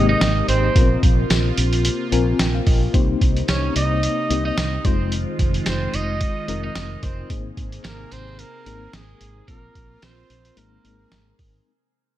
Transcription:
Already playing: G#1 C3 G#3 A#3 C4 D#4 G4 A#4
0.09 D#4 D#5
0.21 G#1, snare, closed hi-hat, tambourine
0.48 G#1 C4 C5, closed hi-hat
0.75 A#1 B3 F4 A#4, kick, closed hi-hat
0.82 C4
1.03 A#1, kick, closed hi-hat
1.30 A#1, snare, closed hi-hat, tambourine
1.58 A#1, closed hi-hat
1.73 closed hi-hat
1.85 closed hi-hat
2.12 A#1 C4 F4 A#4 G#5, closed hi-hat
2.39 A#1 G5, snare, closed hi-hat, tambourine
2.55 F5
2.67 A#1 D#5, kick, open hi-hat
2.94 C2 A#3 C4 D#4 G4 C5, kick, closed hi-hat
3.21 C2, kick, closed hi-hat
3.37 closed hi-hat
3.48 C2 C#4 C#5, snare, closed hi-hat, tambourine
3.76 C2 D#4 D#5, closed hi-hat
4.03 closed hi-hat
4.30 C2 A#3 C4 D#4 G4 D#5, closed hi-hat
4.45 D#4 D#5
4.57 C2, snare, closed hi-hat, tambourine
4.84 F1 D#3 G#3 C4 D#4 F4 C5, kick, closed hi-hat
5.12 closed hi-hat
5.39 F1, kick, closed hi-hat
5.54 closed hi-hat
5.66 F1 C4 C5, snare, closed hi-hat, tambourine
5.94 F1 D#4 D#5, closed hi-hat
6.21 kick, closed hi-hat
6.48 F1 G#3 C4 D#4 F4 A#4, closed hi-hat
6.64 D#4 D#5
6.75 F1, snare, closed hi-hat, tambourine
7.02 F1 C4 C5, kick, closed hi-hat
7.29 G#1 C3 A#3 C4 D#4 G#4 C5, kick, closed hi-hat
7.57 G#1, kick, closed hi-hat
7.72 closed hi-hat
7.84 G#1 A#3 A#4, snare, closed hi-hat, tambourine
8.11 G#1 C4 C5, closed hi-hat
8.38 A#3 A#4, closed hi-hat
8.66 G#1 A#3 C4 D#4 G#4 A#4, closed hi-hat
8.93 G#1 G#3 G#4, snare, closed hi-hat, tambourine
9.21 G#1, closed hi-hat
9.48 A#1 A#3 C4 F4 A#4, kick, closed hi-hat
9.75 A#1, kick, closed hi-hat
10.02 A#1 C4 C5, snare, closed hi-hat, tambourine
10.30 A#1, closed hi-hat
10.45 closed hi-hat
10.57 G#1 G#3 A#3 C4 D#4 G#4 A#4, closed hi-hat
10.84 G#1 G#3 A#3 C4 D#4 A#4, closed hi-hat
11.12 G#1, snare, closed hi-hat, tambourine
11.39 G#1, kick, open hi-hat

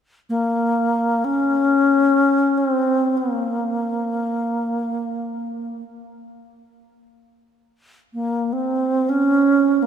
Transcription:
0.29 A#3
1.25 C#4
2.58 C4
3.17 A#3
8.14 A#3
8.53 C4
9.09 C#4
9.82 A#3

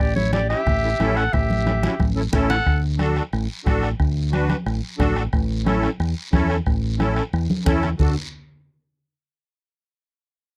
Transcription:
0.00 A1 G4 D5, bombo low, bombo rim, high conga
0.16 E4 C#5, high conga
0.32 C#4 E4 G4 A4 D5, bombo rim, high conga, short guiro
0.49 C#4 E4 G4 E5, bombo rim, short guiro
0.67 A1, bombo low, bombo rim, low conga, long guiro
0.83 C#4 E4 A4, high conga
1.00 A1 C#4 E4 A4, bombo rim, high conga, short guiro
1.17 A4 F#5, bombo rim, short guiro
1.33 A1 G4 E5, bombo low, bombo rim, high conga, low conga, long guiro
1.50 high conga
1.65 C#4 E4 A4, bombo rim, high conga, short guiro
1.82 C#4 E4 F#4, bombo rim, high conga, short guiro
2.00 A1, bombo low, bombo rim, high conga, long guiro
2.15 C#4 E4 A4
2.33 A1 C#4 E4 A4, bombo low, bombo rim, low conga, short guiro
2.49 A4 F#5, bombo rim, low conga, short guiro
2.66 D2, bombo low, bombo rim, long guiro
2.99 D4 F#4 A4, bombo rim, high conga, short guiro
3.16 bombo rim, short guiro
3.33 A1, bombo rim, long guiro
3.65 A1 D4 F#4 A4, bombo low, bombo rim, high conga, short guiro
3.83 bombo rim, short guiro
4.00 D2, bombo low, bombo rim, long guiro
4.32 D4 F#4 B4, bombo rim, high conga, short guiro
4.49 bombo rim, high conga, short guiro
4.66 A1, bombo rim, long guiro
4.98 A1 D4 F#4 A4, bombo low, bombo rim, high conga, low conga, short guiro
5.16 bombo rim, short guiro
5.33 A1, bombo low, bombo rim, long guiro
5.65 C#4 E4 A4, bombo rim, high conga, short guiro
5.83 bombo rim, short guiro
6.00 E2, bombo rim, long guiro
6.33 E2 C#4 E4 A4, bombo low, bombo rim, high conga, short guiro
6.50 bombo rim, short guiro
6.66 A1, bombo low, bombo rim, long guiro
6.99 C#4 E4 A4, bombo rim, high conga, short guiro
7.16 bombo rim, short guiro
7.33 E2, bombo rim, long guiro
7.50 high conga
7.66 E2 C#4 E4 A4, bombo low, bombo rim, low conga, short guiro
7.82 bombo rim, low conga, short guiro
7.99 D2 D4 F#4 A4, bombo low, low conga, long guiro

